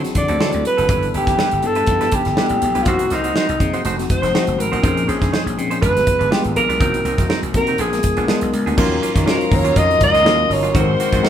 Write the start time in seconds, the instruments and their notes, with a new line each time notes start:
Already playing: tine electric piano F#3 C4 D4 E4 F#4 A4
0.03 tine electric piano F#3 C4 D4 E4 G#4, muted clean electric guitar stroke, snare, closed hi-hat
0.15 slap bass D3, alto saxophone D5, muted clean electric guitar stroke, kick, closed hi-hat
0.28 slap bass D2, clean electric guitar F#3 C4 E4 A4, closed hi-hat
0.39 slap bass D3, tine electric piano F#3 C4 D4 E4 A4, clean electric guitar F#3 C4 E4 A4, snare
0.52 slap bass D2, muted clean electric guitar stroke, closed hi-hat
0.65 alto saxophone B4, muted clean electric guitar stroke, closed hi-hat
0.77 slap bass F#1, clean electric guitar F#3 C4 E4 A4, closed hi-hat
0.89 slap bass G1, clean electric guitar G3 D4 E4 B4, tine electric piano G3 B3 D4 E4 A4, kick, closed hi-hat
1.03 closed hi-hat
1.14 slap bass G1, clean electric guitar G3 D4 E4 B4, alto saxophone G4, closed hi-hat
1.27 clean electric guitar G3 D4 E4 B4, kick, snare, closed hi-hat
1.37 clean electric guitar G3 D4 E4 B4, snare
1.51 slap bass G1, muted clean electric guitar stroke, closed hi-hat
1.63 slap bass G2, tine electric piano G3 B3 D4 E4 A4, alto saxophone A4, muted clean electric guitar stroke, closed hi-hat
1.75 clean electric guitar G3 D4 E4 B4, closed hi-hat
1.86 slap bass G2, muted clean electric guitar stroke, kick, closed hi-hat
2.00 tine electric piano G3 B3 D4 E4 G4, clean electric guitar G3 D4 E4 B4, snare, closed hi-hat
2.12 clean electric guitar G3 D4 E4 B4, alto saxophone G4, kick, closed hi-hat
2.24 slap bass G1, muted clean electric guitar stroke, snare, closed hi-hat
2.36 tine electric piano G3 A3 D4 E4 A4, clean electric guitar G3 D4 E4 B4, snare
2.42 tine electric piano B3
2.49 slap bass A1, muted clean electric guitar stroke, closed hi-hat
2.61 slap bass A#1, muted clean electric guitar stroke, closed hi-hat
2.75 slap bass B1, clean electric guitar G3 D4 E4 B4, closed hi-hat
2.83 slap bass C2, tine electric piano F#3 A#3 C4 D#4 F#4, clean electric guitar A#3, alto saxophone F4, kick, closed hi-hat
2.87 clean electric guitar D#4 F#4 C5, alto saxophone F#4
2.99 closed hi-hat
3.10 slap bass C2, clean electric guitar A#3 D#4 F#4 C5, alto saxophone D#4, snare, closed hi-hat
3.24 clean electric guitar A#3 D#4 F#4 C5, closed hi-hat
3.36 clean electric guitar A#3 D#4 F#4 C5, snare
3.49 slap bass C2, muted clean electric guitar stroke, closed hi-hat
3.59 slap bass C3, tine electric piano F#3 A#3 C4 D#4 G#4, muted clean electric guitar stroke, kick, closed hi-hat
3.74 clean electric guitar A#3 D#4 F#4 C5, closed hi-hat
3.85 slap bass F1, clean electric guitar A3 D#4 F#4 C5, closed hi-hat
3.97 tine electric piano F3 A3 C4 D#4 F#4, muted clean electric guitar stroke, snare, closed hi-hat
4.10 alto saxophone C5, muted clean electric guitar stroke, kick, closed hi-hat
4.22 slap bass F1, clean electric guitar A3 D#4 F#4 C5, snare, closed hi-hat
4.33 tine electric piano F3 A3 C4 D#4 F#4, clean electric guitar A3 D#4 F#4 C5, snare
4.47 slap bass F#1, muted clean electric guitar stroke, closed hi-hat
4.58 slap bass G#1, alto saxophone A#4, muted clean electric guitar stroke, closed hi-hat
4.72 slap bass A1, clean electric guitar A3 D#4 F#4 C5, closed hi-hat
4.82 slap bass A#1, tine electric piano F3 C4 C#4 D#4 G#4, clean electric guitar C#4 D#4 G#4 C5, kick, closed hi-hat
4.97 closed hi-hat
5.07 slap bass A#1, clean electric guitar C#4 D#4 G#4 C5, alto saxophone G#4, closed hi-hat
5.20 clean electric guitar C#4 D#4 G#4 C5, kick, snare, closed hi-hat
5.32 clean electric guitar C#4 D#4 G#4 C5, snare
5.45 slap bass A#1, muted clean electric guitar stroke, closed hi-hat
5.57 slap bass A#2, tine electric piano F3 C4 C#4 D#4 G#4, muted clean electric guitar stroke, closed hi-hat
5.71 clean electric guitar C#4 D#4 G#4 C5, closed hi-hat
5.81 slap bass G1, clean electric guitar G#3 D4 F4 B4, alto saxophone B4, kick, closed hi-hat
5.95 tine electric piano G3 B3 D4 F4 G#4, muted clean electric guitar stroke, snare, closed hi-hat
6.07 muted clean electric guitar stroke, kick, closed hi-hat
6.19 slap bass G1, clean electric guitar G#3 D4 F4 B4, closed hi-hat
6.31 tine electric piano G3 A#3 D4 F4 G#4, clean electric guitar G#3 D4 F4 B4, alto saxophone G4, snare
6.38 tine electric piano B3
6.44 slap bass G#1, muted clean electric guitar stroke, closed hi-hat
6.55 slap bass A#1, alto saxophone A#4, muted clean electric guitar stroke, closed hi-hat
6.69 slap bass B1, clean electric guitar G#3 D4 F4 B4, closed hi-hat
6.80 slap bass C2, clean electric guitar F#3 C4 D#4 A#4, tine electric piano A#3 C4 D#4 F#4 A#4, kick, closed hi-hat
6.94 closed hi-hat
7.05 slap bass C2, clean electric guitar F#3 C4 D#4 A#4, closed hi-hat
7.18 clean electric guitar F#3 C4 D#4 A#4, kick, snare, closed hi-hat
7.29 clean electric guitar F#3 C4 D#4 A#4, snare
7.43 slap bass C2, muted clean electric guitar stroke, closed hi-hat
7.54 slap bass C3, tine electric piano A#3 C4 D#4 F#4 A#4, alto saxophone A#4, muted clean electric guitar stroke, kick, closed hi-hat
7.67 clean electric guitar F#3 C4 D#4 A#4, closed hi-hat
7.78 slap bass A#1, clean electric guitar F3 B3 D4 G#4, alto saxophone G#4, closed hi-hat
7.92 tine electric piano G#3 B3 D4 F4 A#4, muted clean electric guitar stroke, snare, closed hi-hat
8.03 muted clean electric guitar stroke, kick, closed hi-hat
8.17 slap bass A#1, clean electric guitar F3 B3 D4 G#4, closed hi-hat
8.27 clean electric guitar F3 B3 D4 G#4, tine electric piano G#3 B3 D4 F4 A#4, snare
8.41 slap bass B1, muted clean electric guitar stroke, closed hi-hat
8.53 slap bass C#2, muted clean electric guitar stroke, closed hi-hat
8.66 slap bass D2, clean electric guitar F3 B3 D4 G#4, closed hi-hat
8.77 slap bass D#2, tine electric piano F3 C#4 D#4 F4 A#4, clean electric guitar F#3 A#3 C#4 F4, string section F#3 F5 A#5, kick, crash
8.83 tine electric piano F#3
9.01 clean electric guitar F#3 A#3 C#4 F4, closed hi-hat
9.14 slap bass D#3, clean electric guitar F#3 A#3 C#4 F4, kick, snare, closed hi-hat
9.26 clean electric guitar F#3 A#3 C#4 F4, tine electric piano F#3 C#4 D#4 F4 C5, snare
9.30 alto saxophone A#4
9.39 muted clean electric guitar stroke, closed hi-hat
9.51 slap bass D#2, muted clean electric guitar stroke, kick, open hi-hat
9.55 alto saxophone C#5
9.65 clean electric guitar F#3 A#3 C#4 F4, closed hi-hat
9.75 slap bass F2, tine electric piano F#3 C#4 D#4 F4 A#4, clean electric guitar F#3 A#3 C#4 F4, alto saxophone D#5, kick, closed hi-hat
9.89 muted clean electric guitar stroke, closed hi-hat
10.01 slap bass C#2, alto saxophone D#5, muted clean electric guitar stroke, kick, closed hi-hat
10.14 clean electric guitar F#3 A#3 C#4 F4, snare, closed hi-hat
10.24 slap bass D#2, tine electric piano F#3 C#4 D#4 F4 A#4, clean electric guitar F#3 A#3 C#4 F4, snare
10.39 muted clean electric guitar stroke
10.50 slap bass G1, alto saxophone C#5, muted clean electric guitar stroke, open hi-hat
10.63 clean electric guitar F#3 A#3 C#4 F4, closed hi-hat
10.74 slap bass G#1, clean electric guitar D#3 A#3 C4 F#4, tine electric piano G#3 C4 D#4 F#4 A4, string section A#4 F#5 C6, alto saxophone C5, kick, closed hi-hat
10.81 tine electric piano A#4
10.99 clean electric guitar D#3 A#3 C4 F#4, snare, closed hi-hat
11.13 slap bass G#2, clean electric guitar D#3 A#3 C4 F#4, kick, snare, closed hi-hat
11.23 clean electric guitar D#3 A#3 C4 F#4, tine electric piano G#3 C4 D#4 F#4 A#4, snare